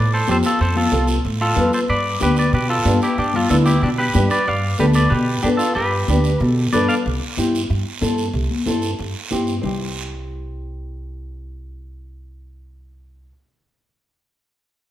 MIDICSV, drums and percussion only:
0, 0, Header, 1, 2, 480
1, 0, Start_track
1, 0, Key_signature, 0, "major"
1, 0, Tempo, 322928
1, 887, Time_signature, 4, 2, 24, 8
1, 22156, End_track
2, 0, Start_track
2, 0, Title_t, "Drums"
2, 401, Note_on_c, 9, 73, 71
2, 416, Note_on_c, 9, 63, 80
2, 550, Note_off_c, 9, 73, 0
2, 565, Note_off_c, 9, 63, 0
2, 638, Note_on_c, 9, 73, 73
2, 786, Note_off_c, 9, 73, 0
2, 877, Note_on_c, 9, 74, 74
2, 1025, Note_off_c, 9, 74, 0
2, 1123, Note_on_c, 9, 63, 73
2, 1272, Note_off_c, 9, 63, 0
2, 1366, Note_on_c, 9, 73, 72
2, 1367, Note_on_c, 9, 63, 79
2, 1515, Note_off_c, 9, 73, 0
2, 1516, Note_off_c, 9, 63, 0
2, 1597, Note_on_c, 9, 73, 70
2, 1745, Note_off_c, 9, 73, 0
2, 1854, Note_on_c, 9, 74, 70
2, 2002, Note_off_c, 9, 74, 0
2, 2321, Note_on_c, 9, 73, 67
2, 2326, Note_on_c, 9, 63, 78
2, 2326, Note_on_c, 9, 64, 78
2, 2469, Note_off_c, 9, 73, 0
2, 2475, Note_off_c, 9, 63, 0
2, 2475, Note_off_c, 9, 64, 0
2, 2572, Note_on_c, 9, 73, 67
2, 2721, Note_off_c, 9, 73, 0
2, 2796, Note_on_c, 9, 74, 68
2, 2945, Note_off_c, 9, 74, 0
2, 3270, Note_on_c, 9, 73, 73
2, 3276, Note_on_c, 9, 63, 77
2, 3419, Note_off_c, 9, 73, 0
2, 3424, Note_off_c, 9, 63, 0
2, 3515, Note_on_c, 9, 73, 71
2, 3664, Note_off_c, 9, 73, 0
2, 3760, Note_on_c, 9, 74, 74
2, 3909, Note_off_c, 9, 74, 0
2, 4245, Note_on_c, 9, 63, 80
2, 4248, Note_on_c, 9, 73, 65
2, 4393, Note_off_c, 9, 63, 0
2, 4397, Note_off_c, 9, 73, 0
2, 4488, Note_on_c, 9, 73, 69
2, 4636, Note_off_c, 9, 73, 0
2, 4729, Note_on_c, 9, 74, 66
2, 4877, Note_off_c, 9, 74, 0
2, 4962, Note_on_c, 9, 63, 76
2, 4962, Note_on_c, 9, 64, 69
2, 5111, Note_off_c, 9, 63, 0
2, 5111, Note_off_c, 9, 64, 0
2, 5202, Note_on_c, 9, 73, 73
2, 5208, Note_on_c, 9, 63, 88
2, 5351, Note_off_c, 9, 73, 0
2, 5356, Note_off_c, 9, 63, 0
2, 5436, Note_on_c, 9, 73, 71
2, 5585, Note_off_c, 9, 73, 0
2, 5672, Note_on_c, 9, 74, 74
2, 5821, Note_off_c, 9, 74, 0
2, 6147, Note_on_c, 9, 73, 72
2, 6165, Note_on_c, 9, 63, 80
2, 6165, Note_on_c, 9, 64, 90
2, 6296, Note_off_c, 9, 73, 0
2, 6314, Note_off_c, 9, 63, 0
2, 6314, Note_off_c, 9, 64, 0
2, 6394, Note_on_c, 9, 73, 61
2, 6543, Note_off_c, 9, 73, 0
2, 6628, Note_on_c, 9, 74, 71
2, 6776, Note_off_c, 9, 74, 0
2, 7103, Note_on_c, 9, 73, 74
2, 7127, Note_on_c, 9, 63, 85
2, 7252, Note_off_c, 9, 73, 0
2, 7276, Note_off_c, 9, 63, 0
2, 7334, Note_on_c, 9, 73, 74
2, 7483, Note_off_c, 9, 73, 0
2, 7585, Note_on_c, 9, 74, 77
2, 7733, Note_off_c, 9, 74, 0
2, 8057, Note_on_c, 9, 73, 68
2, 8080, Note_on_c, 9, 63, 81
2, 8206, Note_off_c, 9, 73, 0
2, 8229, Note_off_c, 9, 63, 0
2, 8313, Note_on_c, 9, 73, 71
2, 8462, Note_off_c, 9, 73, 0
2, 8547, Note_on_c, 9, 74, 68
2, 8695, Note_off_c, 9, 74, 0
2, 9038, Note_on_c, 9, 63, 77
2, 9040, Note_on_c, 9, 73, 72
2, 9187, Note_off_c, 9, 63, 0
2, 9189, Note_off_c, 9, 73, 0
2, 9276, Note_on_c, 9, 73, 74
2, 9424, Note_off_c, 9, 73, 0
2, 9514, Note_on_c, 9, 74, 69
2, 9663, Note_off_c, 9, 74, 0
2, 9996, Note_on_c, 9, 73, 68
2, 10000, Note_on_c, 9, 63, 82
2, 10000, Note_on_c, 9, 64, 77
2, 10144, Note_off_c, 9, 73, 0
2, 10149, Note_off_c, 9, 63, 0
2, 10149, Note_off_c, 9, 64, 0
2, 10245, Note_on_c, 9, 73, 66
2, 10394, Note_off_c, 9, 73, 0
2, 10492, Note_on_c, 9, 74, 65
2, 10641, Note_off_c, 9, 74, 0
2, 10959, Note_on_c, 9, 63, 73
2, 10970, Note_on_c, 9, 73, 73
2, 11108, Note_off_c, 9, 63, 0
2, 11118, Note_off_c, 9, 73, 0
2, 11221, Note_on_c, 9, 73, 72
2, 11370, Note_off_c, 9, 73, 0
2, 11459, Note_on_c, 9, 74, 72
2, 11607, Note_off_c, 9, 74, 0
2, 11917, Note_on_c, 9, 63, 78
2, 11930, Note_on_c, 9, 73, 69
2, 12066, Note_off_c, 9, 63, 0
2, 12079, Note_off_c, 9, 73, 0
2, 12159, Note_on_c, 9, 73, 65
2, 12307, Note_off_c, 9, 73, 0
2, 12389, Note_on_c, 9, 74, 68
2, 12538, Note_off_c, 9, 74, 0
2, 12647, Note_on_c, 9, 63, 61
2, 12795, Note_off_c, 9, 63, 0
2, 12874, Note_on_c, 9, 63, 79
2, 12881, Note_on_c, 9, 73, 64
2, 13023, Note_off_c, 9, 63, 0
2, 13030, Note_off_c, 9, 73, 0
2, 13110, Note_on_c, 9, 73, 65
2, 13258, Note_off_c, 9, 73, 0
2, 13358, Note_on_c, 9, 74, 68
2, 13507, Note_off_c, 9, 74, 0
2, 13834, Note_on_c, 9, 73, 65
2, 13837, Note_on_c, 9, 63, 71
2, 13983, Note_off_c, 9, 73, 0
2, 13985, Note_off_c, 9, 63, 0
2, 14078, Note_on_c, 9, 73, 65
2, 14227, Note_off_c, 9, 73, 0
2, 14318, Note_on_c, 9, 64, 82
2, 14326, Note_on_c, 9, 74, 77
2, 14467, Note_off_c, 9, 64, 0
2, 14475, Note_off_c, 9, 74, 0
2, 22156, End_track
0, 0, End_of_file